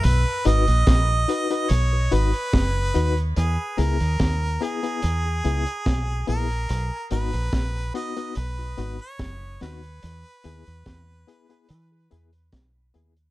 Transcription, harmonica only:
X:1
M:4/4
L:1/16
Q:1/4=72
K:B
V:1 name="Harmonica"
B2 d6 c2 B6 | G2 A4 G8 A2- | A2 B4 d2 B3 c3 B2- | B12 z4 |]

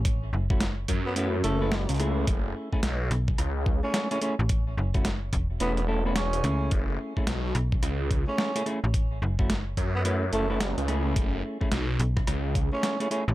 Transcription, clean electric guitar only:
X:1
M:4/4
L:1/16
Q:"Swing 16ths" 1/4=108
K:F#m
V:1 name="Clean electric guitar"
z3 [A,CEF] z4 [A,CEB] z [A,CEA] [A,CEB] z2 [A,CEG]2- | [A,CEG]3 [A,CEG] z6 z [A,CEG]2 [A,CEG] [A,CEG] z | z3 [A,CEF] z4 [A,CEB] z [A,CEA] [A,CEB] z2 [A,CEG]2- | [A,CEG]3 [A,CEG] z6 z [A,CEG]2 [A,CEG] [A,CEG] z |
z3 [A,CEF] z4 [A,CEB] z [A,CEA] [A,CEB] z2 [A,CEG]2- | [A,CEG]3 [A,CEG] z6 z [A,CEG]2 [A,CEG] [A,CEG] z |]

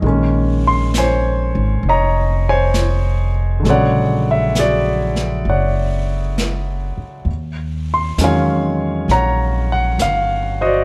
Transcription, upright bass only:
X:1
M:4/4
L:1/8
Q:"Swing" 1/4=66
K:Bbm
V:1 name="Upright bass" clef=bass
B,,,3 A,,, F,,,4 | B,,,4 ^F,,,3 z | E,,2 _F,,2 B,,,2 =G,,,2 |]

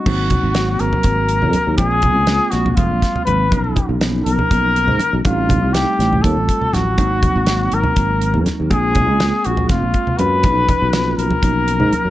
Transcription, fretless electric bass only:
X:1
M:7/8
L:1/16
Q:1/4=121
K:Abmix
V:1 name="Fretless electric bass" clef=bass
A,,,2 z A,,,3 A,,, z A,,,3 F,, z E,, | B,,,3 D,,2 z B,,,2 F,,, B,,, z2 A,,,2 | =B,,,2 z B,,,3 B,,, z B,,,3 A,, z B,,, | =A,,,3 C,,2 z A,,,2 E,, A,,, z2 A,,,2 |
A,,,2 z A,,,3 A,,, z A,,,3 F,, z E,, | B,,,3 D,,2 z B,,,2 F,,, B,,, z2 G,,2 | =B,,,2 z B,,,3 B,,, z B,,,3 A,, z ^F,, |]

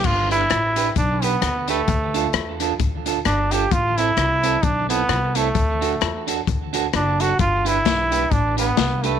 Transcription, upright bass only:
X:1
M:4/4
L:1/8
Q:"Swing" 1/4=130
K:Gmix
V:1 name="Upright bass" clef=bass
G,,,2 A,,,2 B,,,2 D,,2 | D,,2 E,,2 D,,2 G,,,2 | A,,,2 C,,2 B,,,2 C,,2 | D,,2 E,,2 D,,2 ^F,,,2 |
G,,,2 B,,,2 A,,,2 C,,2 |]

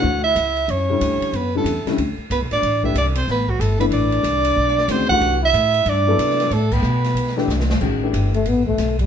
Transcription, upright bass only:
X:1
M:4/4
L:1/8
Q:"Swing" 1/4=185
K:Amix
V:1 name="Upright bass" clef=bass
D,,2 C,,2 F,,2 D,, z | F,,2 E,, z D,, z (3C,, B,,, A,,, | A,,,2 =C,,2 A,,,2 G,,,2 | A,,,2 =C,,2 B,,,2 D,,2 |
=C,,2 A,,2 G,,2 =C,2 | A,,2 B,,2 B,,,2 =C,,2 | [K:Clyd] A,,,2 G,,,2 A,,,2 B,,,2 |]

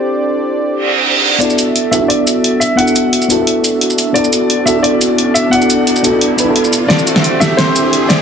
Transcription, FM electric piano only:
X:1
M:4/4
L:1/16
Q:1/4=175
K:Em
V:1 name="FM electric piano"
[CDEGA]16 | [B,DEFA]6 [B,DEFA] [B,DEFA]8- [B,DEFA] | [B,DEFA]6 [B,DEFA] [B,DEFA]8- [B,DEFA] | [B,DEFA]6 [B,DEFA] [B,DFA]8- [B,DFA] |
[B,DEFA]6 [B,DEFA] [B,DEFA]3 [B,DEFB] [B,DEFA]4- [B,DEFA] | [CDEGA]6 [CDEGA] [CDEGA]8- [CDEGA] |]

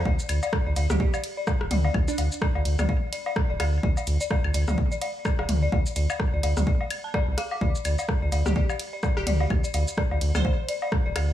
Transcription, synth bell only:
X:1
M:4/4
L:1/16
Q:"Swing 16ths" 1/4=127
K:Cmix
V:1 name="Synth bell"
d z d d z d d z d d z d d z d d | z d d z d d z d d z d d z d d z | d d z d d z d d z d d z d d z d | d z d d z d d z d d z a d z f d' |
d z d d z d d z d d z d d z d d | z d d z d d z d d z d d z d d z |]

